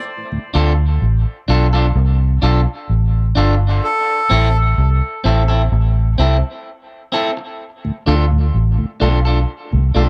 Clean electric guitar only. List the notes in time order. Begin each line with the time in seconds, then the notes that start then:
0.54 D4 F4 A4
1.48 D4 F4 A4
1.73 D4 F4 A4
2.42 D4 F4 A4
3.35 D4 F4 A4
4.30 C4 E4 A4
5.24 C4 E4 A4
5.48 C4 E4 A4
6.18 C4 E4 A4
7.12 C4 E4 A4
7.37 muted clean electric guitar stroke
8.06 D4 F4 A4
9.00 D4 F4 A4
9.25 D4 F4 A4
9.95 D4 F4 A4